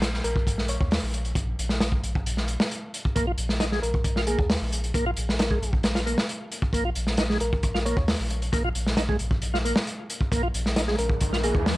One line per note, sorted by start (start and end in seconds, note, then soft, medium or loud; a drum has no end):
0.00 0.21 A#1 loud
0.00 snare loud
0.00 closed hi-hat medium
0.14 snare soft
0.24 0.77 A#1 loud
0.24 0.67 A#4 medium
0.24 closed hi-hat medium
0.36 kick loud
0.47 kick loud
0.47 closed hi-hat medium
0.58 snare soft
0.68 0.76 C#5 medium
0.68 closed hi-hat medium
0.80 0.99 D#2 loud
0.80 0.87 C#5 medium
0.80 kick medium
0.91 snare loud
0.91 open hi-hat medium
1.03 1.33 A#1 loud
1.14 closed hi-hat medium
1.25 closed hi-hat soft
1.35 1.54 A#1 medium
1.35 kick loud
1.35 closed hi-hat medium
1.58 2.00 A#1 loud
1.58 closed hi-hat medium
1.69 snare soft
1.80 snare loud
1.80 closed hi-hat medium
1.92 kick medium
2.03 2.57 A#1 loud
2.03 closed hi-hat medium
2.15 kick medium
2.26 closed hi-hat medium
2.37 snare soft
2.48 closed hi-hat medium
2.60 snare loud
2.71 closed hi-hat medium
2.94 closed hi-hat medium
3.05 kick medium
3.15 3.34 A#1 medium
3.15 3.26 A#3 medium
3.15 kick loud
3.15 closed hi-hat medium
3.27 3.32 F4 loud
3.38 3.80 A#1 loud
3.38 closed hi-hat medium
3.49 snare soft
3.60 3.65 D#4 loud
3.60 snare loud
3.60 closed hi-hat medium
3.72 3.80 G#3 medium
3.72 snare soft
3.82 4.36 A#1 loud
3.82 4.25 A#4 medium
3.82 closed hi-hat medium
3.94 kick medium
4.04 kick loud
4.04 closed hi-hat medium
4.16 4.21 F4 loud
4.16 snare soft
4.27 4.38 A#3 medium
4.27 4.45 G#4 medium
4.27 closed hi-hat medium
4.39 4.57 D#2 loud
4.39 kick loud
4.50 snare loud
4.50 open hi-hat medium
4.61 4.92 A#1 loud
4.72 closed hi-hat medium
4.84 closed hi-hat soft
4.94 5.13 A#1 medium
4.94 5.05 A#3 medium
4.94 kick loud
4.94 closed hi-hat medium
5.06 5.11 F4 loud
5.17 5.59 A#1 loud
5.17 closed hi-hat medium
5.29 snare soft
5.39 5.44 D#4 loud
5.39 5.73 A#4 medium
5.39 snare loud
5.39 closed hi-hat medium
5.51 5.59 G#3 loud
5.51 kick medium
5.62 6.15 A#1 loud
5.62 closed hi-hat medium
5.73 kick loud
5.83 snare loud
5.83 closed hi-hat medium
5.95 6.00 F4 loud
5.95 snare loud
5.95 closed hi-hat medium
6.06 6.17 A#3 medium
6.06 closed hi-hat medium
6.18 snare loud
6.29 closed hi-hat medium
6.52 closed hi-hat medium
6.62 kick medium
6.73 6.92 A#1 medium
6.73 6.84 A#3 medium
6.73 kick loud
6.73 closed hi-hat medium
6.85 6.90 F4 loud
6.95 7.38 A#1 loud
6.95 closed hi-hat medium
7.07 snare soft
7.17 7.23 D#4 loud
7.17 snare loud
7.17 closed hi-hat medium
7.30 7.38 G#3 loud
7.30 snare soft
7.40 7.94 A#1 loud
7.40 7.83 A#4 medium
7.40 closed hi-hat medium
7.53 kick loud
7.63 kick loud
7.63 closed hi-hat medium
7.74 7.79 F4 medium
7.74 snare soft
7.85 7.97 A#3 medium
7.85 7.93 C#5 medium
7.85 closed hi-hat medium
7.97 8.15 D#2 loud
7.97 8.04 C#5 medium
7.97 kick medium
8.08 snare loud
8.08 open hi-hat medium
8.20 8.50 A#1 loud
8.30 closed hi-hat medium
8.42 closed hi-hat soft
8.52 8.71 A#1 loud
8.52 8.63 A#3 medium
8.52 kick loud
8.52 closed hi-hat medium
8.64 8.69 F4 loud
8.75 9.17 A#1 loud
8.75 closed hi-hat medium
8.86 snare soft
8.97 9.02 D#4 loud
8.97 snare loud
8.97 closed hi-hat medium
9.09 9.17 G#3 loud
9.09 kick medium
9.19 9.73 A#1 loud
9.19 closed hi-hat medium
9.31 kick loud
9.42 closed hi-hat medium
9.54 9.58 F4 loud
9.54 snare soft
9.65 9.76 A#3 medium
9.65 closed hi-hat medium
9.76 snare loud
9.87 closed hi-hat medium
10.10 closed hi-hat medium
10.21 kick medium
10.31 10.50 A#1 loud
10.31 10.42 A#3 medium
10.31 kick loud
10.31 closed hi-hat medium
10.31 riser medium
10.43 10.48 F4 loud
10.54 10.96 A#1 loud
10.54 closed hi-hat medium
10.66 snare soft
10.76 10.81 D#4 loud
10.76 snare loud
10.76 closed hi-hat medium
10.87 10.96 G#3 loud
10.87 snare soft
10.98 11.52 A#1 loud
10.98 11.41 A#4 medium
10.98 closed hi-hat medium
11.10 kick loud
11.21 kick loud
11.21 closed hi-hat medium
11.33 11.38 F4 loud
11.33 snare soft
11.43 11.55 A#3 medium
11.43 11.62 G#4 medium
11.43 closed hi-hat medium
11.55 11.73 D#2 loud
11.55 kick medium
11.66 snare loud
11.66 open hi-hat medium